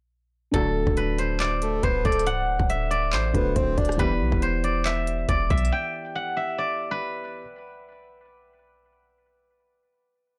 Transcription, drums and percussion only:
0.54 kick loud
0.54 closed hi-hat medium
0.87 kick loud
0.97 closed hi-hat medium
1.19 closed hi-hat medium
1.40 clap loud
1.40 closed hi-hat medium
1.62 closed hi-hat medium
1.83 kick loud
1.83 closed hi-hat medium
2.05 kick medium
2.05 closed hi-hat soft
2.12 closed hi-hat medium
2.19 closed hi-hat medium
2.27 closed hi-hat medium
2.59 kick loud
2.70 closed hi-hat medium
2.91 closed hi-hat medium
3.13 clap loud
3.13 closed hi-hat medium
3.34 kick medium
3.34 closed hi-hat medium
3.56 kick loud
3.56 closed hi-hat medium
3.78 kick medium
3.78 closed hi-hat soft
3.85 closed hi-hat medium
3.89 cross-stick loud
3.89 closed hi-hat medium
3.99 kick loud
3.99 closed hi-hat medium
4.32 kick loud
4.42 closed hi-hat medium
4.64 closed hi-hat medium
4.86 clap loud
4.86 closed hi-hat medium
5.07 closed hi-hat medium
5.29 kick loud
5.29 closed hi-hat medium
5.50 kick loud
5.50 closed hi-hat soft
5.58 closed hi-hat medium
5.65 closed hi-hat medium

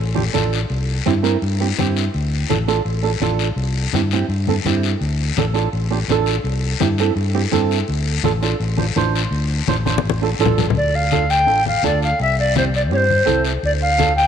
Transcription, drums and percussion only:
0.00 long guiro medium
0.17 high conga medium
0.35 high conga medium
0.35 short guiro medium
0.53 short guiro medium
0.70 long guiro medium
1.06 high conga medium
1.06 short guiro medium
1.24 short guiro medium
1.42 long guiro medium
1.78 high conga medium
1.78 short guiro medium
1.97 short guiro medium
2.14 long guiro medium
2.50 high conga medium
2.50 short guiro medium
2.69 short guiro medium
2.86 long guiro medium
3.22 high conga medium
3.22 short guiro medium
3.39 short guiro medium
3.58 long guiro medium
3.93 high conga medium
3.93 short guiro medium
4.11 short guiro medium
4.30 long guiro medium
4.47 high conga medium
4.66 high conga medium
4.66 short guiro medium
4.83 short guiro medium
5.02 long guiro medium
5.37 high conga medium
5.37 short guiro medium
5.54 short guiro medium
5.73 long guiro medium
6.09 high conga medium
6.09 short guiro medium
6.26 short guiro medium
6.45 long guiro medium
6.80 high conga medium
6.80 short guiro medium
6.98 short guiro medium
7.17 long guiro medium
7.52 high conga medium
7.52 short guiro medium
7.71 short guiro medium
7.88 long guiro medium
8.24 high conga medium
8.24 short guiro medium
8.43 short guiro medium
8.61 long guiro medium
8.78 high conga medium
8.96 high conga medium
8.96 short guiro medium
9.15 short guiro medium
9.33 long guiro medium
9.68 high conga medium
9.68 short guiro medium
9.86 high conga medium
9.86 short guiro medium
9.98 high conga medium
10.05 long guiro medium
10.10 high conga medium
10.40 short guiro medium
10.46 low conga medium
10.58 low conga medium
10.58 short guiro medium
10.70 low conga medium
10.75 long guiro medium
11.11 high conga medium
11.11 short guiro medium
11.30 short guiro medium
11.48 long guiro medium
11.66 high conga medium
11.84 high conga medium
11.84 short guiro medium
12.02 short guiro medium
12.20 long guiro medium
12.56 high conga medium
12.56 short guiro medium
12.74 short guiro medium
12.91 long guiro medium
13.10 high conga medium
13.27 high conga medium
13.27 short guiro medium
13.45 short guiro medium
13.64 long guiro medium
13.99 high conga medium
13.99 short guiro medium
14.18 short guiro medium

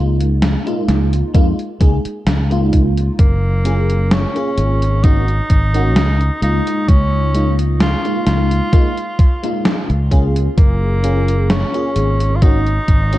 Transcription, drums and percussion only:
0.20 closed hi-hat medium
0.42 snare loud
0.42 closed hi-hat medium
0.67 closed hi-hat soft
0.88 snare medium
0.88 closed hi-hat medium
1.13 closed hi-hat medium
1.34 kick loud
1.34 closed hi-hat medium
1.59 closed hi-hat soft
1.81 kick loud
1.81 closed hi-hat medium
2.05 closed hi-hat medium
2.27 snare loud
2.27 closed hi-hat medium
2.51 closed hi-hat soft
2.73 kick medium
2.73 closed hi-hat medium
2.97 closed hi-hat medium
3.19 kick loud
3.19 closed hi-hat medium
3.65 closed hi-hat medium
3.90 closed hi-hat medium
4.11 snare loud
4.11 closed hi-hat medium
4.36 closed hi-hat soft
4.58 closed hi-hat medium
4.82 closed hi-hat medium
5.04 kick loud
5.04 closed hi-hat medium
5.28 closed hi-hat soft
5.50 kick medium
5.50 closed hi-hat medium
5.74 closed hi-hat medium
5.96 snare loud
5.96 closed hi-hat medium
6.21 closed hi-hat soft
6.42 closed hi-hat medium
6.67 closed hi-hat medium
6.88 kick loud
6.88 closed hi-hat medium
7.35 closed hi-hat medium
7.59 closed hi-hat medium
7.80 snare loud
7.80 closed hi-hat medium
8.05 closed hi-hat soft
8.27 snare medium
8.27 closed hi-hat medium
8.51 closed hi-hat medium
8.73 kick loud
8.73 closed hi-hat medium
8.98 closed hi-hat soft
9.19 kick loud
9.19 closed hi-hat medium
9.44 closed hi-hat medium
9.65 snare loud
9.65 closed hi-hat medium
9.90 closed hi-hat soft
10.11 kick medium
10.11 closed hi-hat medium
10.36 closed hi-hat medium
10.58 kick loud
10.58 closed hi-hat medium
11.04 closed hi-hat medium
11.28 closed hi-hat medium
11.50 snare loud
11.50 closed hi-hat medium
11.74 closed hi-hat soft
11.96 closed hi-hat medium
12.20 closed hi-hat medium
12.42 kick loud
12.42 closed hi-hat medium
12.67 closed hi-hat soft
12.88 kick medium
12.88 closed hi-hat medium
13.13 closed hi-hat medium

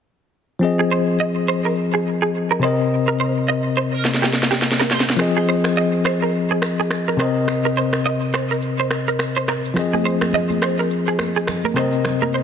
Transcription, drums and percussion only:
4.05 snare medium
4.14 snare medium
4.24 snare medium
4.33 snare medium
4.43 snare medium
4.52 snare medium
4.62 snare medium
4.72 snare medium
4.81 snare medium
4.91 snare medium
5.00 snare loud
5.10 snare medium
5.19 finger snap medium
5.19 cross-stick medium
5.64 finger snap medium
5.64 cross-stick medium
6.05 finger snap medium
6.05 cross-stick medium
6.62 finger snap medium
6.62 cross-stick medium
6.91 finger snap medium
6.91 cross-stick medium
7.20 finger snap medium
7.20 cross-stick medium
7.48 finger snap medium
7.48 cross-stick medium
7.48 shaker medium
7.64 shaker soft
7.77 shaker medium
7.93 finger snap medium
7.93 cross-stick medium
7.93 shaker medium
8.06 shaker medium
8.21 shaker soft
8.34 finger snap medium
8.34 cross-stick medium
8.34 shaker medium
8.50 shaker medium
8.62 shaker medium
8.79 shaker soft
8.91 finger snap medium
8.91 cross-stick medium
8.91 shaker medium
9.08 shaker medium
9.19 finger snap medium
9.19 cross-stick medium
9.19 shaker medium
9.37 shaker medium
9.48 finger snap medium
9.48 cross-stick medium
9.48 shaker medium
9.64 shaker medium
9.76 finger snap medium
9.76 cross-stick medium
9.76 low conga medium
9.76 shaker medium
9.93 high conga medium
9.93 shaker soft
10.06 shaker medium
10.21 finger snap medium
10.21 cross-stick medium
10.21 high conga medium
10.21 shaker medium
10.33 low conga medium
10.33 shaker medium
10.50 high conga medium
10.50 shaker soft
10.62 finger snap medium
10.62 cross-stick medium
10.62 shaker medium
10.78 shaker medium
10.90 shaker medium
11.07 shaker soft
11.19 finger snap medium
11.19 cross-stick medium
11.19 high conga soft
11.19 shaker medium
11.36 shaker medium
11.47 finger snap medium
11.47 cross-stick medium
11.47 low conga medium
11.47 shaker medium
11.64 high conga medium
11.64 shaker medium
11.76 finger snap medium
11.76 cross-stick medium
11.76 low conga medium
11.76 shaker medium
11.93 shaker medium
12.05 finger snap medium
12.05 cross-stick medium
12.05 low conga medium
12.05 shaker medium
12.21 high conga medium
12.21 shaker soft
12.34 shaker medium

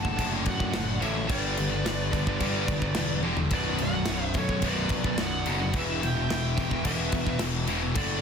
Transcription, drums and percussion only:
0.05 kick loud
0.19 kick loud
0.19 crash medium
0.46 kick loud
0.46 crash medium
0.60 kick medium
0.73 snare loud
0.73 crash medium
1.02 crash medium
1.30 kick loud
1.30 crash medium
1.57 crash medium
1.86 snare loud
1.86 crash medium
2.13 kick medium
2.13 crash medium
2.27 kick medium
2.40 kick loud
2.40 crash medium
2.68 kick loud
2.68 crash medium
2.82 kick medium
2.95 snare loud
2.95 crash medium
3.23 high tom medium
3.37 floor tom medium
3.51 kick loud
3.51 crash medium
3.78 crash medium
4.05 snare loud
4.05 crash medium
4.34 kick medium
4.34 crash medium
4.49 kick loud
4.62 kick loud
4.62 crash medium
4.89 kick loud
4.89 crash medium
5.04 kick medium
5.18 snare loud
5.18 crash medium
5.46 crash medium
5.73 kick loud
5.73 crash medium
6.03 crash medium
6.30 snare loud
6.30 crash medium
6.58 kick medium
6.58 crash medium
6.71 kick medium
6.85 kick medium
6.85 crash loud
7.12 kick loud
7.12 crash medium
7.27 kick medium
7.39 snare loud
7.39 crash medium
7.67 crash medium
7.95 kick loud
7.95 crash loud

